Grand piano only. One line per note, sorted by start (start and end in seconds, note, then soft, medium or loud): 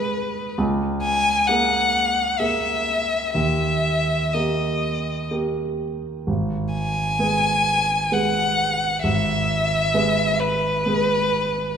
0.00 0.60 G#3 soft
0.00 0.60 G#4 soft
0.00 0.61 B4 soft
0.58 1.46 C#2 medium
1.49 2.36 A#3 soft
1.49 2.36 G#4 soft
1.49 2.36 A#4 soft
2.40 3.31 A#3 soft
2.40 3.31 G#4 soft
2.40 3.31 A#4 soft
3.35 4.31 D#2 soft
4.34 5.27 A#3 soft
4.34 5.28 G4 soft
4.34 5.28 A#4 soft
5.31 6.23 A#3 soft
5.31 6.24 G4 soft
5.31 6.24 A#4 soft
6.27 7.17 G#1 soft
7.19 8.07 G#3 soft
7.19 8.08 G#4 soft
7.19 8.08 B4 soft
8.12 8.99 G#3 soft
8.12 8.99 G#4 soft
8.12 8.99 B4 soft
9.04 9.92 G#1 soft
9.94 10.81 G#3 soft
9.94 10.81 G#4 soft
9.94 10.82 B4 soft
10.86 11.77 G#3 soft
10.86 11.77 G#4 soft
10.86 11.77 B4 soft